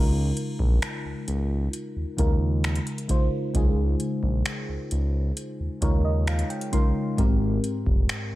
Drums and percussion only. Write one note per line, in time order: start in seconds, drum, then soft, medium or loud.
0.37 closed hi-hat medium
0.59 kick medium
0.82 finger snap loud
0.82 closed hi-hat medium
1.28 closed hi-hat medium
1.73 closed hi-hat medium
2.18 kick medium
2.18 closed hi-hat medium
2.64 finger snap loud
2.64 closed hi-hat medium
2.75 closed hi-hat medium
2.87 closed hi-hat medium
2.98 closed hi-hat medium
3.09 kick medium
3.09 closed hi-hat medium
3.55 kick loud
3.55 closed hi-hat medium
4.00 closed hi-hat medium
4.23 kick medium
4.45 finger snap loud
4.45 closed hi-hat medium
4.91 closed hi-hat medium
5.37 closed hi-hat medium
5.82 kick medium
5.82 closed hi-hat medium
6.27 finger snap loud
6.27 closed hi-hat medium
6.39 closed hi-hat medium
6.50 closed hi-hat medium
6.61 closed hi-hat medium
6.73 kick medium
6.73 closed hi-hat medium
7.18 kick loud
7.18 closed hi-hat medium
7.64 closed hi-hat medium
7.86 kick medium
8.09 finger snap loud
8.09 closed hi-hat medium